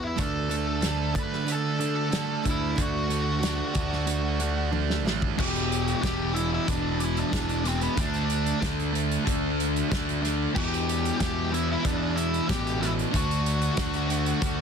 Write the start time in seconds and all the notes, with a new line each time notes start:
Already playing: E2 E3 B3 C#4 E4
0.04 E4 E5
0.16 D2 D3 A3 D4 A4, kick, closed hi-hat
0.22 A5
0.49 D3 A3 D4, closed hi-hat
0.82 D3 A3 D4, snare, closed hi-hat
1.14 D3 A3 D4, kick, closed hi-hat
1.19 B4 B5
1.33 snare
1.45 D3 A3 D4 F#4, closed hi-hat
1.52 A4 A5
1.79 D3 A3 D4, closed hi-hat
2.10 D3 A3 D4, snare, closed hi-hat
2.44 D2 D3 A3 D4, kick, closed hi-hat
2.49 E4 E5
2.75 D2 D3 A3 D4, kick, closed hi-hat
2.79 F#4 F#5
3.08 D3 A3 D4, closed hi-hat
3.42 D3 A3 D4, snare, closed hi-hat
3.74 D2 D3 A3 D4, kick, closed hi-hat
3.93 snare
4.06 D3 A3 D4 F#4, closed hi-hat
4.39 D3 A3 D4, closed hi-hat
4.72 D3 A3 D4, high tom
4.90 snare
5.04 A1 D3 A3 D4, snare
5.22 kick
5.37 E1 E2 B2 E3 G4 G5, kick, crash
5.56 closed hi-hat
5.72 closed hi-hat
5.86 F#5, closed hi-hat
6.01 E1 E2 B2 E3 G4 G5, kick, snare, closed hi-hat
6.33 E2 B2 E3 E4 E5, closed hi-hat
6.54 E4 E5
6.67 E1 E2 B2 E3 D4 D5, kick, closed hi-hat
7.00 E4, closed hi-hat
7.05 E5
7.17 D4 D5, closed hi-hat
7.31 E1 E2 B2 E3, kick, snare, closed hi-hat
7.49 closed hi-hat
7.64 E2 B2 E3 C5, snare, closed hi-hat
7.68 C4
7.81 B3 B4, closed hi-hat
7.96 D2 D3 A3 D4, kick, closed hi-hat
8.00 D5
8.14 closed hi-hat
8.30 closed hi-hat
8.46 closed hi-hat
8.61 D2 D3 A3 D4, kick, snare, closed hi-hat
8.80 closed hi-hat
8.92 D3 A3 D4, closed hi-hat
9.11 closed hi-hat
9.25 D2 D3 A3 D4, kick, closed hi-hat
9.60 closed hi-hat
9.76 closed hi-hat
9.89 D2 D3 A3 D4, kick, snare, closed hi-hat
10.09 closed hi-hat
10.22 D3 A3 D4, snare, closed hi-hat
10.54 E2 B2 E3 G4 G5, kick, crash
10.74 closed hi-hat
10.89 closed hi-hat
11.05 closed hi-hat
11.19 E2 B2 E3 G4 G5, kick, snare, closed hi-hat
11.52 E2 B2 E3 E4 E5, closed hi-hat
11.72 E4 E5
11.84 E2 B2 E3 D4 D5, kick, closed hi-hat
12.16 E4 E5, closed hi-hat
12.34 closed hi-hat
12.47 A1 E2 B2 E3 G4 G5, kick, snare, closed hi-hat
12.67 closed hi-hat
12.79 E2 B2 E3 E4 E5, snare, closed hi-hat
12.99 closed hi-hat
13.12 D2 D3 A3 D4 F#4, kick, closed hi-hat
13.16 F#5
13.31 closed hi-hat
13.46 closed hi-hat
13.62 closed hi-hat
13.77 D2 D3 A3 D4, kick, snare, closed hi-hat
13.94 closed hi-hat
14.09 D3 A3 D4, closed hi-hat
14.26 closed hi-hat
14.41 D2 D3 A3 D4, kick, closed hi-hat